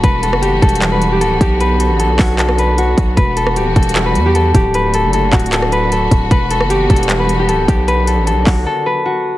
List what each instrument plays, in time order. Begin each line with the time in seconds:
Already playing: harp F#4 A4, string section F#4
0.04 808-style bass E1, string section E3 G3 B3, harp B4, kick, closed hi-hat
0.23 harp A4, closed hi-hat
0.33 808-style bass F#1, cross-stick
0.42 harp G4, closed hi-hat
0.62 808-style bass E1, harp A4, kick, closed hi-hat
0.69 closed hi-hat
0.75 closed hi-hat
0.82 clap, closed hi-hat
0.92 harp B4
1.02 closed hi-hat
1.12 harp G4
1.21 808-style bass D1, harp A4, closed hi-hat
1.41 808-style bass B1, harp G4, kick, closed hi-hat
1.60 string section D3 F#3, harp B4, closed hi-hat
1.80 harp A4, closed hi-hat
1.90 808-style bass A1
1.99 harp A4, closed hi-hat
2.04 808-style bass B1
2.19 808-style bass B1, harp F#4, kick, cross-stick, clap, open hi-hat
2.39 harp A4, clap, closed hi-hat
2.49 cross-stick
2.58 harp B4, closed hi-hat
2.78 harp F#4, closed hi-hat
2.98 808-style bass B1, kick, closed hi-hat
3.17 808-style bass E1, string section E3 G3 F#4, harp B4, kick, closed hi-hat
3.37 harp A4, closed hi-hat
3.47 cross-stick
3.56 808-style bass D1, harp G4, closed hi-hat
3.66 808-style bass E1
3.76 808-style bass E1, harp A4, kick, closed hi-hat
3.83 closed hi-hat
3.89 closed hi-hat
3.96 clap, closed hi-hat
4.06 harp B4
4.15 808-style bass E2, closed hi-hat
4.26 harp G4
4.35 harp A4, closed hi-hat
4.54 808-style bass D1, harp G4, kick, closed hi-hat
4.74 string section D3 F#3 A3 F#4, harp B4, closed hi-hat
4.94 harp A4, closed hi-hat
5.04 808-style bass F#1
5.13 harp A4, closed hi-hat
5.33 808-style bass D1, harp F#4, kick, clap, closed hi-hat
5.39 closed hi-hat
5.46 closed hi-hat
5.52 harp A4, clap, closed hi-hat
5.62 cross-stick
5.72 harp B4, closed hi-hat
5.92 harp A4, closed hi-hat
6.11 808-style bass D1, kick, closed hi-hat
6.31 808-style bass E1, string section E3 G3 B3, harp B4, kick, closed hi-hat
6.51 harp A4, closed hi-hat
6.60 808-style bass F#1, cross-stick
6.70 harp G4, closed hi-hat
6.90 808-style bass E1, harp A4, kick, closed hi-hat
6.96 closed hi-hat
7.03 closed hi-hat
7.09 clap, closed hi-hat
7.19 harp B4
7.29 closed hi-hat
7.39 harp G4
7.48 808-style bass D1, harp A4, closed hi-hat
7.68 808-style bass B1, harp G4, kick, closed hi-hat
7.88 string section D3 F#3, harp B4, closed hi-hat
8.07 harp A4, closed hi-hat
8.17 808-style bass A1
8.27 harp A4, closed hi-hat
8.32 808-style bass B1
8.47 808-style bass B1, harp F#4, kick, cross-stick, clap, open hi-hat
8.66 harp A4
8.86 harp B4
9.05 harp F#4